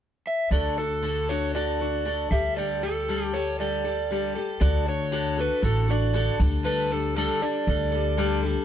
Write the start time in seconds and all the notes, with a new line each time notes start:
0.27 E5
0.51 D2 D3 D4 F#4 A4 D5
0.77 D4 F#4 A4
1.02 D3 D4 F#4 A4
1.29 D4 F#4 A4 C#5
1.54 D3 D4 F#4 A4 D5
1.79 D4 F#4 A4
2.05 D3 D4 F#4 A4
2.30 D2 G3 G4 A4 E5
2.57 D3 G3 G4 A4 D5
2.81 G3 G4 A4
3.08 D3 G3 G4 A4
3.33 G3 G4 A4 C#5
3.59 D3 G3 G4 A4 D5
3.84 G3 G4 A4
4.10 D3 G3 G4 A4
4.35 G3 G4 A4
4.60 D2 D3 D4 F#4 A4 D5
4.86 D4 F#4 A4 C#5
5.12 D3 D4 F#4 A4
5.37 D4 F#4 A4 B4
5.62 A1 D3 D4 F#4 A4
5.88 D4 F#4 A4 D5
6.13 D3 D4 F#4 A4
6.39 D2 G3 D4 A4
6.64 D3 G3 D4 A4 B4
6.91 G3 D4 A4
7.16 D3 G3 D4 A4
7.41 G3 D4 A4 D5
7.67 D2 D3 G3 D4 A4
7.92 G3 D4 A4
8.17 D3 G3 D4 A4
8.43 G3 D4 A4